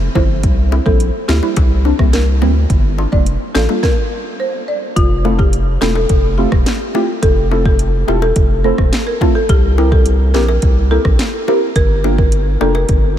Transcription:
0.15 G1 F3 A3 C4 E4 C5, kick, low bongo
0.43 C2, kick, closed hi-hat
0.71 C4 E4, high bongo
0.86 A#1 G3 A#3 C4 E4 A4, kick
1.00 closed hi-hat
1.28 D2 C4 E4 G4, snare, high bongo
1.42 G3 A#3 C4 E4, high bongo
1.56 C2, kick, closed hi-hat, high bongo
1.85 C4 D4, high bongo
1.99 C2 G3 A#3 C4 E4, kick, cross-stick
2.13 A#4, snare, closed hi-hat
2.41 D2 G3 A#3 C4 E4, low bongo
2.70 G1, kick, closed hi-hat
2.98 D4 F4, high bongo
3.12 F1 G3 A#3 D4 F4 D5, kick
3.26 closed hi-hat
3.55 A1 D4 F4 A4, snare, high bongo
3.69 G3 A#3 D4 F4, high bongo
3.83 A#4, kick, snare
4.40 C5
4.68 D5
4.96 F1 F4, kick, closed hi-hat
5.24 A3 C4 E4 F4 A4, high bongo
5.39 G4, kick
5.53 closed hi-hat
5.81 E1 A3 C4 E4 F4 A4, snare, high bongo
5.95 A4, high bongo
6.09 F1, kick, closed hi-hat
6.38 A3 C4 E4 F4 G4 A4
6.52 E1, kick, cross-stick
6.66 snare, closed hi-hat
6.94 A3 C4 E4 F4 G4, low bongo
7.23 F1 A4, kick, closed hi-hat
7.51 A3 C4 E4 F4 A4, high bongo
7.65 A4, kick
7.79 closed hi-hat
8.07 E1 A3 C4 E4 F4 G4 A4, high bongo
8.22 A4, high bongo
8.36 F1, kick, closed hi-hat
8.64 A3 C4 E4 F4 A4 C5
8.78 E1, kick, cross-stick
8.93 snare, closed hi-hat
9.07 A#4
9.21 A3 C4 E4 F4 A4, kick, low bongo
9.35 A4
9.49 C2 G4, kick, closed hi-hat
9.77 A#3 C4 E4 G4 A#4, high bongo
9.92 A4, kick
10.06 closed hi-hat
10.34 A#1 A#3 C4 E4 G4 A#4, snare, high bongo
10.48 A#4, high bongo
10.62 C2, kick, closed hi-hat
10.91 A#3 C4 E4 G4 A4 A#4
11.05 A#1, kick, cross-stick
11.19 snare, closed hi-hat
11.47 A#3 C4 E4 G4 A#4, low bongo
11.76 G1 A#4, kick, closed hi-hat
12.04 A#3 D4 F4 G4 A#4, high bongo
12.18 A#4, kick
12.32 closed hi-hat
12.60 F1 A#3 D4 F4 G4 A4 A#4, high bongo
12.75 A#4, high bongo
12.89 G1, kick, closed hi-hat

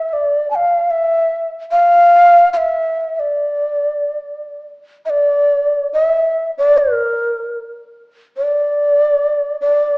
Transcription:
Already playing: E5
0.09 E5
0.13 D5
0.51 A5
0.55 F5
0.90 E5
1.72 F5
2.53 E5 F5
3.16 D5 E5
5.06 E5
5.10 D5
5.93 E5
6.58 D5
6.78 A#4
8.37 D5
9.61 D5

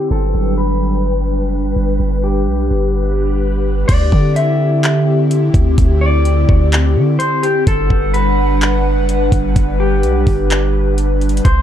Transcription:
Already playing: G5
0.11 G1 F#3 G3 D4 A4 B4 F#6
0.34 G1
0.58 B4
1.41 F#1
1.58 G1
1.76 G1
2.00 G1 G4 F#5
2.24 G4
2.47 B1
2.71 G1
3.88 D2 D3 C4 E4 G4 D5, kick, closed hi-hat, crash
4.12 D3, kick
4.36 E5, closed hi-hat
4.83 clap, closed hi-hat
5.31 closed hi-hat
5.54 D2, kick, closed hi-hat
5.78 D2, kick, closed hi-hat
6.01 D5
6.25 closed hi-hat
6.49 D2, kick
6.72 clap, closed hi-hat
6.96 D3
7.19 C5, closed hi-hat
7.43 G4, closed hi-hat
7.67 G1 G3 D4 A4 B4 F#5, kick, closed hi-hat
7.90 G1, kick
8.14 B4, closed hi-hat
8.62 clap, closed hi-hat
8.97 F#1
9.09 closed hi-hat
9.15 G1
9.32 G1, kick, closed hi-hat
9.56 G1, kick, closed hi-hat
9.80 G4
10.03 B1, closed hi-hat
10.27 G1, kick, open hi-hat
10.51 clap, closed hi-hat
10.98 closed hi-hat
11.21 closed hi-hat
11.29 closed hi-hat
11.37 closed hi-hat
11.45 C2 C3 G3 C4 E4 C5, kick, closed hi-hat

